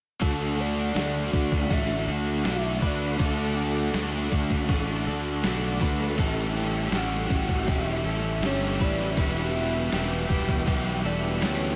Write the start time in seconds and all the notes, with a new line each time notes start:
0.20 D2 D3 A3 D4 F#4 A4 F#5 D6, kick, open hi-hat
0.24 D5
0.57 A3 D4 F#4 D5
0.94 D2 D3 A3 D4 F#4, snare, open hi-hat
1.32 D2 A3 D4 F#4, kick
1.52 kick, snare
1.70 A1 D3 A3 D4 F#4 E5, kick, open hi-hat
2.07 D2 A3 D4 F#4 A4 F#5
2.43 B1 D3 A3 D4 F#4, snare, open hi-hat
2.49 E5
2.81 D2 A3 D4 F#4 B4, kick
2.86 D5
3.17 D2 D3 A3 D4 F#4 A4, kick, open hi-hat
3.25 A4
3.55 A3 D4 F#4
3.94 D2 D3 A3 D4 F#4, snare, open hi-hat
4.30 D2 A3 D4 F#4, kick
4.50 kick, snare
4.69 A1 D3 A3 D4 F#4, kick, open hi-hat
5.05 D2 A3 D4 F#4 A4
5.43 B1 D3 A3 D4 F#4, snare, open hi-hat
5.80 D2 A3 D4 F#4 B4, kick
6.00 snare
6.18 A1 A2 E3 G3 C#4 E4 G4 A4 E5 C#6, kick, open hi-hat
6.55 G3 C#4 G4
6.92 A1 E3 G3 C#4 E4 G4, snare, open hi-hat
6.97 F#5
7.30 A1 G3 C#4 G4, kick
7.49 kick
7.66 E1 A2 E3 G3 C#4 E4 G4, kick, open hi-hat
7.72 E5
8.04 A1 G3 C#4 E4 A4
8.40 G1 E3 G3 C#4 G4, snare, open hi-hat
8.44 E4 C#5
8.80 A1 G3 C#4 G4 B4 D5, kick
8.99 snare
9.17 E1 E2 B2 E3 G3 B3 E4 G4 B4 E5 G5, kick, open hi-hat
9.54 E3 G3 B3 G4
9.92 E1 E3 G3 B3 E4 G4, snare, open hi-hat
10.29 E1 E3 G3 B3 G4, kick
10.49 kick
10.66 B1 E3 G3 B3 E4 G4, kick, open hi-hat
11.03 E1 G3 B3 E4 A4 D5
11.40 D2 E3 G3 B3 E4 G4 C#5, snare, open hi-hat